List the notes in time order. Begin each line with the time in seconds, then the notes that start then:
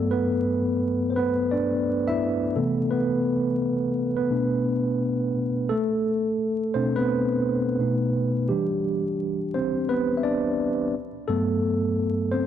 Already playing: G2 F#3 A3 B3 A4
0.11 B3 B4
1.10 C5
1.16 B3 B4
1.51 D4 D5
2.08 E4 E5
2.56 C3 E3 A3 B3 A4
2.91 B3 B4
4.17 B3 B4
4.30 B2 A3 D4
5.69 A3 A4
6.74 B2 A3 C4 D4 C5
6.96 B3 B4
7.80 B2 A3 D#4
8.49 E3 G3 D4 G4
9.54 C4 C5
9.89 B3 B4
10.17 E5
10.23 D4 D5
11.28 G2 F#3 A3 B3 A4
12.32 C4 C5